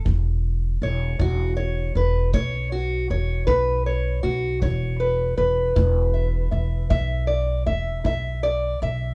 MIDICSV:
0, 0, Header, 1, 4, 480
1, 0, Start_track
1, 0, Tempo, 760456
1, 37, Time_signature, 12, 3, 24, 8
1, 5769, End_track
2, 0, Start_track
2, 0, Title_t, "Steel-string acoustic guitar"
2, 0, Program_c, 0, 25
2, 33, Note_on_c, 0, 52, 69
2, 467, Note_off_c, 0, 52, 0
2, 524, Note_on_c, 0, 73, 83
2, 752, Note_on_c, 0, 64, 58
2, 760, Note_off_c, 0, 73, 0
2, 766, Note_on_c, 0, 66, 87
2, 986, Note_off_c, 0, 66, 0
2, 988, Note_on_c, 0, 73, 90
2, 1186, Note_off_c, 0, 64, 0
2, 1232, Note_off_c, 0, 73, 0
2, 1241, Note_on_c, 0, 71, 88
2, 1470, Note_on_c, 0, 52, 68
2, 1474, Note_off_c, 0, 71, 0
2, 1476, Note_on_c, 0, 73, 115
2, 1715, Note_off_c, 0, 73, 0
2, 1718, Note_on_c, 0, 66, 91
2, 1905, Note_off_c, 0, 52, 0
2, 1957, Note_off_c, 0, 66, 0
2, 1961, Note_on_c, 0, 73, 90
2, 2187, Note_off_c, 0, 73, 0
2, 2189, Note_on_c, 0, 64, 67
2, 2189, Note_on_c, 0, 71, 98
2, 2432, Note_off_c, 0, 71, 0
2, 2438, Note_on_c, 0, 73, 80
2, 2624, Note_off_c, 0, 64, 0
2, 2667, Note_off_c, 0, 73, 0
2, 2670, Note_on_c, 0, 66, 81
2, 2913, Note_off_c, 0, 66, 0
2, 2913, Note_on_c, 0, 52, 80
2, 2919, Note_on_c, 0, 73, 87
2, 3155, Note_on_c, 0, 71, 77
2, 3346, Note_off_c, 0, 52, 0
2, 3385, Note_off_c, 0, 71, 0
2, 3392, Note_on_c, 0, 71, 81
2, 3633, Note_on_c, 0, 64, 66
2, 3638, Note_off_c, 0, 73, 0
2, 3874, Note_on_c, 0, 76, 51
2, 4067, Note_off_c, 0, 64, 0
2, 4108, Note_off_c, 0, 76, 0
2, 4111, Note_on_c, 0, 76, 44
2, 4354, Note_off_c, 0, 76, 0
2, 4355, Note_off_c, 0, 71, 0
2, 4355, Note_on_c, 0, 52, 75
2, 4356, Note_on_c, 0, 76, 100
2, 4588, Note_off_c, 0, 76, 0
2, 4590, Note_on_c, 0, 74, 89
2, 4789, Note_off_c, 0, 52, 0
2, 4834, Note_off_c, 0, 74, 0
2, 4838, Note_on_c, 0, 76, 91
2, 5076, Note_on_c, 0, 64, 64
2, 5078, Note_off_c, 0, 76, 0
2, 5087, Note_on_c, 0, 76, 90
2, 5319, Note_off_c, 0, 76, 0
2, 5322, Note_on_c, 0, 74, 95
2, 5509, Note_off_c, 0, 64, 0
2, 5560, Note_off_c, 0, 74, 0
2, 5571, Note_on_c, 0, 76, 85
2, 5769, Note_off_c, 0, 76, 0
2, 5769, End_track
3, 0, Start_track
3, 0, Title_t, "Upright bass"
3, 0, Program_c, 1, 32
3, 37, Note_on_c, 1, 28, 87
3, 491, Note_off_c, 1, 28, 0
3, 516, Note_on_c, 1, 28, 80
3, 736, Note_off_c, 1, 28, 0
3, 754, Note_on_c, 1, 28, 96
3, 1209, Note_off_c, 1, 28, 0
3, 1233, Note_on_c, 1, 28, 88
3, 1454, Note_off_c, 1, 28, 0
3, 1476, Note_on_c, 1, 35, 94
3, 1931, Note_off_c, 1, 35, 0
3, 1958, Note_on_c, 1, 28, 83
3, 2177, Note_off_c, 1, 28, 0
3, 2197, Note_on_c, 1, 35, 85
3, 2651, Note_off_c, 1, 35, 0
3, 2675, Note_on_c, 1, 35, 84
3, 2895, Note_off_c, 1, 35, 0
3, 2920, Note_on_c, 1, 28, 91
3, 3373, Note_off_c, 1, 28, 0
3, 3395, Note_on_c, 1, 28, 85
3, 3615, Note_off_c, 1, 28, 0
3, 3637, Note_on_c, 1, 28, 105
3, 4092, Note_off_c, 1, 28, 0
3, 4115, Note_on_c, 1, 28, 85
3, 4336, Note_off_c, 1, 28, 0
3, 4360, Note_on_c, 1, 35, 94
3, 4813, Note_off_c, 1, 35, 0
3, 4839, Note_on_c, 1, 28, 83
3, 5058, Note_off_c, 1, 28, 0
3, 5079, Note_on_c, 1, 35, 79
3, 5533, Note_off_c, 1, 35, 0
3, 5567, Note_on_c, 1, 35, 91
3, 5769, Note_off_c, 1, 35, 0
3, 5769, End_track
4, 0, Start_track
4, 0, Title_t, "Drums"
4, 37, Note_on_c, 9, 36, 63
4, 100, Note_off_c, 9, 36, 0
4, 755, Note_on_c, 9, 36, 60
4, 818, Note_off_c, 9, 36, 0
4, 1474, Note_on_c, 9, 36, 62
4, 1538, Note_off_c, 9, 36, 0
4, 2196, Note_on_c, 9, 36, 66
4, 2259, Note_off_c, 9, 36, 0
4, 2916, Note_on_c, 9, 36, 62
4, 2980, Note_off_c, 9, 36, 0
4, 3638, Note_on_c, 9, 36, 69
4, 3701, Note_off_c, 9, 36, 0
4, 4359, Note_on_c, 9, 36, 71
4, 4423, Note_off_c, 9, 36, 0
4, 5081, Note_on_c, 9, 36, 60
4, 5144, Note_off_c, 9, 36, 0
4, 5769, End_track
0, 0, End_of_file